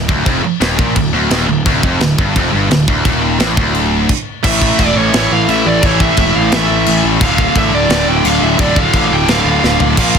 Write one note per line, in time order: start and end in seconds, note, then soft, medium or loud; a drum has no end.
0.08 0.25 D1 loud
0.08 0.26 D2 loud
0.08 kick loud
0.26 0.43 F1 medium
0.26 0.43 F2 loud
0.26 kick loud
0.26 crash medium
0.44 muted picked electric bass stroke soft
0.44 muted distorted electric guitar stroke medium
0.61 0.78 D#1 medium
0.61 0.78 D#2 loud
0.61 snare loud
0.61 crash medium
0.79 0.95 A#1 medium
0.79 0.96 A#2 loud
0.79 kick loud
0.96 1.13 D1 medium
0.96 1.11 D2 medium
0.96 kick medium
0.96 crash medium
1.14 1.30 D1 loud
1.14 1.31 D2 loud
1.30 1.47 D#1 loud
1.30 1.48 D#2 loud
1.30 snare loud
1.30 crash medium
1.49 1.65 D1 medium
1.49 1.63 D2 medium
1.66 1.82 D1 loud
1.66 1.83 D2 loud
1.66 kick loud
1.66 crash medium
1.83 2.00 F1 medium
1.83 2.01 F2 loud
1.83 kick loud
2.00 2.17 D1 medium
2.00 2.15 D2 medium
2.00 snare loud
2.00 crash medium
2.18 2.35 G1 loud
2.18 2.36 G2 loud
2.18 kick loud
2.36 2.52 F1 loud
2.36 2.53 F2 loud
2.36 kick loud
2.36 crash medium
2.52 2.69 G1 medium
2.52 2.71 G2 loud
2.70 2.87 D1 medium
2.70 2.85 D2 medium
2.70 snare loud
2.70 crash medium
2.88 3.04 D1 loud
2.88 3.04 D2 loud
2.88 kick loud
3.05 3.38 D#1 medium
3.05 3.39 D#2 loud
3.05 kick loud
3.05 crash medium
3.40 3.56 A1 loud
3.40 3.57 A2 loud
3.40 snare loud
3.40 crash medium
3.57 4.06 D1 medium
3.57 4.09 D2 loud
3.57 kick loud
3.75 crash medium
4.09 kick loud
4.09 crash loud
4.43 4.71 A1 loud
4.43 5.12 A2 loud
4.43 5.14 E3 loud
4.43 4.80 E5 loud
4.43 kick loud
4.43 crash loud
4.43 china medium
4.47 5.16 A3 loud
4.62 kick loud
4.79 4.92 E1 medium
4.79 4.97 D5 medium
4.79 kick medium
4.79 china medium
4.96 5.09 A1 medium
4.96 5.31 C#5 medium
5.12 5.27 A1 loud
5.12 5.81 A2 medium
5.12 5.82 E3 medium
5.12 snare loud
5.12 china medium
5.16 5.85 A3 medium
5.31 5.44 A1 medium
5.31 5.50 F5 loud
5.49 5.62 A1 loud
5.49 5.65 E5 medium
5.49 china medium
5.66 5.79 A1 loud
5.66 5.85 D5 loud
5.82 6.10 A1 loud
5.82 6.50 A2 loud
5.82 6.52 E3 loud
5.82 6.55 A3 loud
5.82 6.01 C#5 loud
5.82 kick loud
5.82 china medium
6.00 6.17 E5 medium
6.00 kick loud
6.17 6.31 E1 loud
6.17 6.35 E5 medium
6.17 kick medium
6.17 china medium
6.35 6.49 A1 medium
6.35 6.51 F5 loud
6.52 6.66 A1 loud
6.52 7.20 A2 medium
6.52 7.21 E3 medium
6.52 7.24 A3 medium
6.52 7.01 E5 loud
6.52 snare loud
6.52 china medium
6.70 6.83 A1 medium
6.86 7.01 A1 loud
6.86 china medium
7.04 7.17 A1 loud
7.20 7.48 D1 loud
7.20 7.88 D2 loud
7.20 7.90 A2 loud
7.20 7.54 F5 loud
7.20 kick loud
7.20 china medium
7.24 7.92 D3 loud
7.38 kick loud
7.56 7.69 A1 loud
7.56 7.74 E5 loud
7.56 kick medium
7.56 china medium
7.72 7.86 D1 medium
7.72 8.08 D5 loud
7.89 8.03 D1 loud
7.89 8.57 D2 medium
7.89 8.59 A2 medium
7.89 8.60 D3 medium
7.89 snare loud
7.89 china medium
8.07 8.21 D1 medium
8.07 8.26 G5 loud
8.25 8.38 D1 loud
8.25 8.43 F5 loud
8.25 china medium
8.42 8.55 D1 loud
8.42 8.60 E5 loud
8.58 8.86 D1 loud
8.58 9.26 D2 loud
8.58 9.28 A2 loud
8.58 9.29 D3 loud
8.58 8.78 D5 loud
8.58 kick loud
8.58 china medium
8.76 8.95 F5 loud
8.76 kick medium
8.94 9.07 A1 loud
8.94 9.13 F5 loud
8.94 kick medium
8.94 china medium
9.11 9.24 D1 medium
9.11 9.30 G5 loud
9.27 9.41 D1 medium
9.27 9.96 D2 medium
9.27 9.97 A2 medium
9.27 9.78 F5 loud
9.27 snare loud
9.27 china medium
9.31 9.98 D3 medium
9.45 9.59 D1 medium
9.64 9.77 D1 medium
9.64 snare medium
9.80 9.94 D1 medium
9.80 floor tom medium
9.97 10.19 A#1 loud
9.97 10.19 A#2 loud
9.97 10.19 F3 loud
9.97 10.19 A#3 loud
9.97 10.19 F5 loud
9.97 kick loud
9.97 crash loud
9.97 china medium
10.15 kick medium